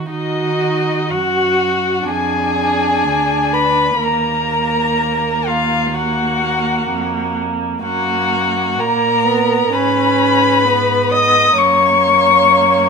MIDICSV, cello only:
0, 0, Header, 1, 2, 480
1, 0, Start_track
1, 0, Key_signature, -6, "minor"
1, 0, Tempo, 993377
1, 50, Time_signature, 4, 2, 24, 8
1, 1010, Tempo, 963082
1, 3410, Tempo, 938967
1, 4850, Tempo, 923077
1, 6498, End_track
2, 0, Start_track
2, 0, Title_t, "Cello"
2, 0, Program_c, 0, 42
2, 46, Note_on_c, 0, 51, 38
2, 531, Note_on_c, 0, 42, 41
2, 538, Note_off_c, 0, 51, 0
2, 1003, Note_off_c, 0, 42, 0
2, 1006, Note_on_c, 0, 41, 45
2, 1485, Note_on_c, 0, 38, 38
2, 1492, Note_off_c, 0, 41, 0
2, 1967, Note_off_c, 0, 38, 0
2, 1970, Note_on_c, 0, 39, 44
2, 3388, Note_off_c, 0, 39, 0
2, 3410, Note_on_c, 0, 41, 39
2, 3877, Note_off_c, 0, 41, 0
2, 3886, Note_on_c, 0, 42, 47
2, 4368, Note_on_c, 0, 46, 47
2, 4376, Note_off_c, 0, 42, 0
2, 4847, Note_off_c, 0, 46, 0
2, 4850, Note_on_c, 0, 44, 55
2, 5792, Note_off_c, 0, 44, 0
2, 5807, Note_on_c, 0, 42, 57
2, 6498, Note_off_c, 0, 42, 0
2, 6498, End_track
0, 0, End_of_file